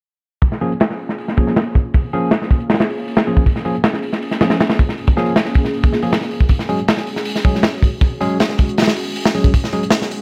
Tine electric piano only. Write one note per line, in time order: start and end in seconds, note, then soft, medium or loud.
0.61 0.71 F3 medium
0.61 0.71 A#3 medium
0.61 0.72 C#4 medium
0.61 0.71 G#4 medium
1.37 1.53 F3 medium
1.37 1.53 A#3 medium
1.37 1.53 C#4 medium
1.37 1.53 G#4 medium
2.13 2.29 F3 medium
2.13 2.29 A#3 medium
2.13 2.29 C#4 medium
2.13 2.29 G#4 loud
3.27 3.43 F3 medium
3.27 3.43 A#3 medium
3.27 3.43 C#4 medium
3.27 3.43 G#4 medium
3.65 3.75 F3 medium
3.65 3.75 A#3 medium
3.65 3.75 C#4 medium
3.65 3.75 G#4 medium
4.41 4.57 F3 medium
4.41 4.57 A#3 medium
4.41 4.57 C#4 medium
4.41 4.57 G#4 medium
5.17 5.33 F3 medium
5.17 5.33 A#3 medium
5.17 5.33 C#4 medium
5.17 5.33 G#4 loud
6.03 6.13 F3 medium
6.03 6.12 A#3 medium
6.03 6.12 C#4 medium
6.03 6.12 G#4 medium
6.69 6.79 F#3 medium
6.69 6.79 G#3 medium
6.69 6.79 C#4 medium
6.69 6.79 G#4 medium
7.45 7.61 F#3 medium
7.45 7.61 G#3 medium
7.45 7.61 C#4 medium
7.45 7.61 G#4 medium
8.21 8.37 F#3 medium
8.21 8.37 G#3 medium
8.21 8.37 C#4 medium
8.21 8.37 G#4 loud
9.35 9.51 F#3 medium
9.35 9.51 G#3 medium
9.35 9.51 C#4 medium
9.35 9.51 G#4 medium
9.73 9.83 F#3 medium
9.73 9.83 G#3 medium
9.73 9.83 C#4 medium
9.73 9.83 G#4 medium